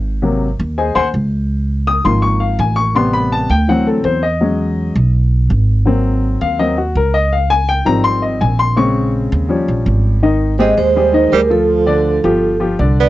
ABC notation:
X:1
M:4/4
L:1/8
Q:1/4=165
K:Ab
V:1 name="Vibraphone"
z8 | z8 | z8 | z8 |
z8 | z8 | z8 | z2 e c3 B =A- |
=A4- A z2 =d |]
V:2 name="Upright piano"
z4 [Acea] [c_gac'] z2 | z2 e' c' d' f a d' | c' _c' =a g ^f =A =c e- | e4 z4 |
z3 f e _G B e | f a g b c' e a c' | d'2 z6 | [E,Ee]2 [A,GA]2 [G,GA] [E,Ee] [G,GA] [F,F=A]- |
[F,F=A] [=D,=D=d]2 [F,FG]2 [F,FG] [D,Dd]2 |]
V:3 name="Upright piano" clef=bass
z [C,_G,B,] z6 | z3 [E,F,B,]4- [E,F,B,] | [C,G,_C]3 z [=E,^F,=C]3 z | [^F,^G,^C]3 z4 z |
[_G,B,C]4 [G,B,C] z3 | z3 [E,F,G,C]4- [E,F,G,C] | [D,A,C]4 [F,G,D]4 | z8 |
z8 |]
V:4 name="Tenor saxophone" clef=bass
z8 | z8 | z8 | z8 |
z8 | z8 | z8 | z2 C A,3 G, F,- |
F,4- F, z2 _C |]
V:5 name="Upright bass" clef=bass
A,,,3 E,,2 E,, D,,2- | D,,3 A,,,3 =A,,,2- | =A,,,3 =D,,3 =E,,2- | =E,,3 =B,,,3 ^G,,,2- |
^G,,,3 E,,3 D,,2- | D,,3 A,,,3 B,,,2- | B,,,3 E,,2 B,,, A,,,2- | A,,,3 E,,3 =D,,2- |
=D,,3 G,,,3 C,,2 |]